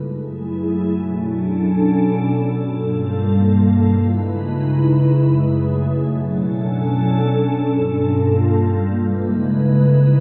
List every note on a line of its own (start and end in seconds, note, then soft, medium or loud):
0.03 0.98 F#2 medium
0.03 2.56 F#3 medium
0.03 0.98 A3 medium
0.03 0.98 E4 medium
0.03 0.98 G#4 medium
0.99 2.57 B2 medium
0.99 2.57 C#4 medium
0.99 2.57 D4 medium
0.99 2.57 A4 medium
2.58 3.85 G2 medium
2.58 3.85 G3 medium
2.58 3.85 A#3 medium
2.58 3.85 F4 medium
2.58 3.85 A4 medium
3.86 5.12 C#3 medium
3.86 5.12 G#3 medium
3.86 5.12 D#4 medium
3.86 6.07 E4 medium
3.86 5.12 B4 medium
5.14 6.08 F#2 medium
5.14 7.67 F#3 medium
5.14 6.09 A3 medium
5.14 6.08 G#4 medium
6.09 7.67 B2 medium
6.09 7.67 C#4 medium
6.09 7.67 D4 medium
6.09 8.94 A4 medium
7.69 8.95 G2 medium
7.69 8.95 G3 medium
7.69 8.95 A#3 medium
7.69 8.95 F4 medium
8.97 10.20 C#3 medium
8.97 10.20 G#3 medium
8.97 10.20 D#4 medium
8.97 10.20 E4 medium
8.97 10.20 B4 medium